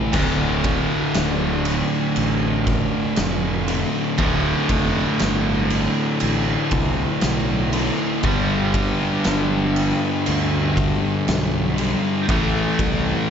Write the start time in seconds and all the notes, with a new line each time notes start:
Already playing: A2 E3 A3
0.13 D1 D2 A2, kick, crash, splash
0.17 D3
0.64 kick, ride
1.14 D1, snare, ride
1.65 ride
2.16 A1, ride
2.67 kick, ride
3.16 F1, snare, ride
3.68 D2 A2 D3, ride
4.18 D1 D2 A2, kick, ride
4.23 D3
4.69 F1, kick, ride
5.19 G1, snare, ride
5.70 ride
6.20 A1, ride
6.71 C2, kick, ride
7.21 B1, snare, ride
7.73 A2 D3, ride
7.77 D2
8.23 G1 G2 D3 G3, kick, ride
8.74 kick, ride
9.24 G1, snare, ride
9.76 ride
10.26 D2, ride
10.77 kick, ride
11.28 B1, snare, ride
11.78 G2 D3 G3, ride
12.28 A1 A2 E3 A3, kick, ride
12.79 C2, kick, ride